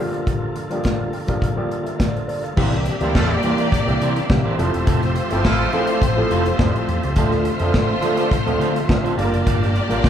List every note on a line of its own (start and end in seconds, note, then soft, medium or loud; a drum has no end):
0.00 2.55 G2 medium
0.00 2.54 D3 medium
0.00 0.55 F3 medium
0.00 0.55 G3 medium
0.00 0.56 A#3 medium
0.00 2.55 A#3 medium
0.00 0.56 D4 medium
0.00 2.54 F4 medium
0.00 0.56 G4 medium
0.00 2.55 A4 medium
0.14 closed hi-hat soft
0.27 kick loud
0.27 closed hi-hat medium
0.56 closed hi-hat medium
0.70 1.15 F3 medium
0.70 1.15 G3 medium
0.70 1.15 A#3 medium
0.70 1.16 D4 medium
0.70 1.16 G4 medium
0.70 closed hi-hat soft
0.84 kick medium
0.84 snare loud
0.84 closed hi-hat medium
1.13 1.40 G5 medium
1.13 open hi-hat medium
1.28 1.50 F3 medium
1.28 1.51 G3 medium
1.28 1.51 A#3 medium
1.28 1.51 D4 medium
1.28 1.51 G4 medium
1.28 kick medium
1.28 closed hi-hat soft
1.42 1.83 F5 medium
1.42 kick loud
1.42 closed hi-hat medium
1.56 2.01 F3 medium
1.56 2.01 G3 medium
1.56 2.01 A#3 medium
1.56 2.02 D4 medium
1.56 2.02 G4 medium
1.71 closed hi-hat medium
1.86 1.99 E5 medium
1.86 closed hi-hat soft
2.00 2.27 D5 medium
2.00 kick loud
2.00 snare loud
2.00 closed hi-hat medium
2.15 2.27 C5 medium
2.15 closed hi-hat soft
2.28 2.55 C5 medium
2.28 2.43 D5 medium
2.28 open hi-hat medium
2.44 2.71 F5 medium
2.44 closed hi-hat soft
2.56 2.88 C2 loud
2.56 4.56 C3 medium
2.56 2.91 E3 medium
2.56 2.91 G3 medium
2.56 4.56 G3 medium
2.56 4.54 A#3 medium
2.56 2.91 A#3 medium
2.56 4.56 A#3 medium
2.56 2.91 C4 medium
2.56 4.57 D4 medium
2.56 2.74 E4 medium
2.56 4.54 G4 medium
2.56 2.92 G4 loud
2.56 2.73 A#4 medium
2.56 2.72 C5 medium
2.56 4.54 D5 medium
2.56 9.13 E5 medium
2.56 kick loud
2.56 crash loud
2.73 muted clean electric guitar stroke medium
2.73 snare soft
2.73 closed hi-hat soft
2.86 muted clean electric guitar stroke soft
2.86 closed hi-hat medium
3.01 3.15 D2 medium
3.01 3.34 E3 medium
3.01 3.34 G3 medium
3.01 3.12 G3 medium
3.01 3.35 A#3 medium
3.01 3.35 C4 medium
3.01 3.12 E4 loud
3.01 3.14 E4 medium
3.01 3.35 G4 loud
3.01 3.13 A#4 medium
3.01 3.12 C5 medium
3.01 3.13 C5 medium
3.01 closed hi-hat soft
3.15 3.35 E2 medium
3.15 3.38 A3 loud
3.15 3.38 F4 loud
3.15 3.38 A4 loud
3.15 muted clean electric guitar stroke soft
3.15 kick loud
3.15 snare loud
3.31 muted clean electric guitar stroke soft
3.43 3.77 E3 loud
3.43 3.77 G3 medium
3.43 3.77 A#3 medium
3.43 3.78 C4 medium
3.43 3.60 E4 medium
3.43 3.78 G4 loud
3.43 3.60 A#4 medium
3.43 3.60 C5 medium
3.43 closed hi-hat medium
3.58 3.72 E4 soft
3.58 3.71 A#4 medium
3.58 3.71 D5 medium
3.58 closed hi-hat medium
3.72 muted clean electric guitar stroke soft
3.72 kick loud
3.72 closed hi-hat medium
3.87 3.97 C2 loud
3.87 4.20 E3 medium
3.87 4.21 G3 medium
3.87 4.21 A#3 medium
3.87 4.21 C4 medium
3.87 4.21 G4 loud
3.87 muted clean electric guitar stroke soft
3.87 closed hi-hat soft
4.01 4.21 C3 loud
4.01 4.18 E4 loud
4.01 4.18 A#4 loud
4.01 4.17 C5 loud
4.01 closed hi-hat medium
4.16 muted clean electric guitar stroke soft
4.16 closed hi-hat medium
4.30 4.41 C3 loud
4.30 4.59 E3 medium
4.30 4.59 G3 medium
4.30 4.59 A#3 medium
4.30 4.58 C4 medium
4.30 4.59 G4 loud
4.30 muted clean electric guitar stroke soft
4.30 kick loud
4.30 snare loud
4.45 4.57 E4 medium
4.45 4.59 A#4 medium
4.45 4.58 C5 medium
4.57 4.70 F1 medium
4.57 7.14 F3 medium
4.57 5.16 F3 medium
4.57 5.16 A3 medium
4.57 7.13 A3 medium
4.57 9.13 C4 medium
4.57 5.16 C4 medium
4.57 4.72 E4 medium
4.57 5.16 E4 medium
4.57 7.13 F4 medium
4.57 7.13 G4 medium
4.57 7.14 A4 medium
4.57 4.72 A4 medium
4.57 5.17 A4 medium
4.57 4.72 C5 medium
4.57 7.13 C5 loud
4.57 closed hi-hat medium
4.73 4.84 E1 medium
4.73 muted clean electric guitar stroke soft
4.73 closed hi-hat soft
4.87 5.18 F1 loud
4.87 5.03 E4 medium
4.87 5.02 A4 medium
4.87 5.01 C5 medium
4.87 kick loud
4.87 closed hi-hat medium
5.02 muted clean electric guitar stroke soft
5.02 snare soft
5.02 closed hi-hat soft
5.16 muted clean electric guitar stroke medium
5.16 closed hi-hat medium
5.31 5.45 G1 medium
5.31 5.64 F3 medium
5.31 5.42 G3 medium
5.31 5.64 A3 medium
5.31 5.64 C4 medium
5.31 5.42 E4 medium
5.31 5.65 E4 medium
5.31 5.43 E4 soft
5.31 5.42 G4 loud
5.31 5.43 A4 medium
5.31 5.65 A4 loud
5.31 5.43 C5 soft
5.31 closed hi-hat medium
5.44 5.65 A1 medium
5.44 5.67 F3 loud
5.44 5.67 E4 loud
5.44 5.67 A4 loud
5.44 muted clean electric guitar stroke soft
5.44 kick loud
5.44 snare loud
5.61 muted clean electric guitar stroke soft
5.73 6.07 F3 medium
5.73 6.07 A3 medium
5.73 6.07 C4 medium
5.73 5.88 E4 medium
5.73 6.07 E4 medium
5.73 5.88 A4 medium
5.73 6.08 A4 loud
5.73 5.88 C5 medium
5.73 6.00 F5 medium
5.73 closed hi-hat medium
5.87 6.00 E4 medium
5.87 6.00 A4 medium
5.87 6.00 D5 medium
5.87 closed hi-hat medium
6.02 6.22 A1 loud
6.02 6.17 G5 medium
6.02 kick loud
6.02 closed hi-hat medium
6.17 6.50 F3 medium
6.17 6.50 A3 medium
6.17 6.51 C4 medium
6.17 6.51 E4 medium
6.17 6.51 A4 loud
6.17 6.30 E5 medium
6.31 6.51 F1 medium
6.31 6.47 E4 medium
6.31 6.45 A4 loud
6.31 6.45 C5 loud
6.31 6.57 F5 medium
6.31 closed hi-hat medium
6.46 muted clean electric guitar stroke soft
6.46 closed hi-hat medium
6.59 6.70 F2 loud
6.59 7.05 F3 medium
6.59 7.05 A3 medium
6.59 7.05 C4 medium
6.59 7.05 E4 medium
6.59 7.06 A4 loud
6.59 6.74 D5 medium
6.59 muted clean electric guitar stroke soft
6.59 kick loud
6.59 snare loud
6.75 6.87 C5 medium
6.75 muted clean electric guitar stroke medium
6.75 closed hi-hat soft
6.88 6.99 E2 medium
6.88 7.15 C5 medium
6.88 closed hi-hat medium
7.03 7.13 C#2 loud
7.03 muted clean electric guitar stroke soft
7.03 closed hi-hat soft
7.15 7.48 D2 loud
7.15 9.15 D3 medium
7.15 7.51 F3 medium
7.15 9.15 A3 medium
7.15 7.51 A3 medium
7.15 9.14 A3 loud
7.15 7.51 C4 medium
7.15 7.51 D4 medium
7.15 10.10 F4 medium
7.15 7.33 F4 medium
7.15 9.14 F4 medium
7.15 7.32 A4 loud
7.15 7.51 A4 loud
7.15 9.14 C5 medium
7.15 7.32 C5 loud
7.15 kick loud
7.15 closed hi-hat medium
7.32 muted clean electric guitar stroke medium
7.32 snare soft
7.32 closed hi-hat soft
7.45 muted clean electric guitar stroke soft
7.45 closed hi-hat medium
7.59 7.70 F2 medium
7.59 7.94 F3 loud
7.59 7.94 A3 medium
7.59 7.94 C4 medium
7.59 7.95 D4 medium
7.59 7.73 F4 soft
7.59 7.72 A4 medium
7.59 7.95 A4 loud
7.59 7.72 C5 medium
7.59 closed hi-hat soft
7.74 7.94 A2 loud
7.74 muted clean electric guitar stroke soft
7.74 kick loud
7.74 snare loud
7.89 muted clean electric guitar stroke soft
8.02 8.36 F3 medium
8.02 8.37 A3 medium
8.02 8.37 C4 medium
8.02 8.37 D4 medium
8.02 8.19 F4 medium
8.02 8.18 A4 medium
8.02 8.37 A4 loud
8.02 8.18 C5 medium
8.02 closed hi-hat medium
8.17 8.30 F4 medium
8.17 8.30 A4 medium
8.17 8.30 D5 medium
8.17 closed hi-hat medium
8.31 muted clean electric guitar stroke soft
8.31 kick loud
8.31 closed hi-hat medium
8.46 8.56 D2 loud
8.46 8.79 F3 medium
8.46 8.80 A3 medium
8.46 8.80 C4 medium
8.46 8.80 D4 medium
8.46 8.80 A4 loud
8.46 muted clean electric guitar stroke medium
8.46 closed hi-hat soft
8.59 8.80 D3 loud
8.59 8.76 F4 medium
8.59 8.75 A4 loud
8.59 8.74 C5 loud
8.59 closed hi-hat medium
8.75 muted clean electric guitar stroke soft
8.75 closed hi-hat medium
8.88 9.00 D3 loud
8.88 9.17 F3 medium
8.88 9.17 A3 medium
8.88 9.17 C4 medium
8.88 9.17 D4 medium
8.88 9.18 A4 loud
8.88 muted clean electric guitar stroke soft
8.88 kick loud
8.88 snare loud
9.04 9.17 F4 medium
9.04 9.18 A4 medium
9.04 9.18 C5 medium
9.04 closed hi-hat soft
9.17 9.28 G1 loud
9.17 9.75 G3 medium
9.17 10.10 G3 medium
9.17 9.75 A#3 medium
9.17 10.10 A#3 medium
9.17 10.10 D4 medium
9.17 9.75 D4 medium
9.17 9.31 F4 medium
9.17 9.75 F4 medium
9.17 10.10 G4 medium
9.17 9.25 A4 medium
9.17 10.10 A#4 medium
9.17 9.31 A#4 medium
9.17 10.10 D5 loud
9.17 9.31 D5 medium
9.17 10.10 A5 medium
9.17 closed hi-hat medium
9.25 9.78 A#4 loud
9.33 9.42 F#1 medium
9.33 muted clean electric guitar stroke medium
9.33 closed hi-hat medium
9.46 9.78 G1 loud
9.46 9.63 F4 medium
9.46 9.61 A#4 medium
9.46 9.61 D5 loud
9.46 kick loud
9.46 closed hi-hat loud
9.62 muted clean electric guitar stroke medium
9.62 snare soft
9.62 closed hi-hat soft
9.76 muted clean electric guitar stroke soft
9.76 closed hi-hat medium
9.89 10.00 A1 medium
9.89 10.10 G3 loud
9.89 10.10 A#3 medium
9.89 10.10 D4 medium
9.89 10.10 F4 medium
9.89 10.02 F4 medium
9.89 10.10 A#4 loud
9.89 10.02 A#4 medium
9.89 10.02 D5 medium
9.89 closed hi-hat medium
10.04 10.10 A#1 loud
10.04 muted clean electric guitar stroke soft
10.04 kick loud
10.04 snare loud